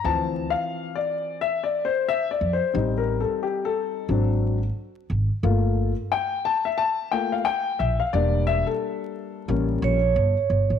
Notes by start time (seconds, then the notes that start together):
0.04 D2 E3 F3 C4 A5
0.50 F5
0.95 D5
1.41 E5
1.64 D5
1.85 C5
2.08 E5
2.31 D5
2.41 F2
2.53 C5
2.73 A1 G3 C4 D#4
2.98 A#4
3.20 A4
3.43 G4
3.65 A4
4.09 G#1 F#3 C4 D4
5.10 G#1
5.43 G1 A3 A#3 F4
6.12 G5
6.45 A5
6.65 E5
6.78 A5
7.12 A3 A#3 F4 G5
7.32 F5
7.45 G5
7.79 A#1 E5
8.00 F5
8.13 E1 G3 A#3 D4 D5
8.47 E5
8.67 A4
9.48 A1 G3 A#3 C#4
9.82 A#1 C#5
10.16 G1
10.50 G1
10.70 A1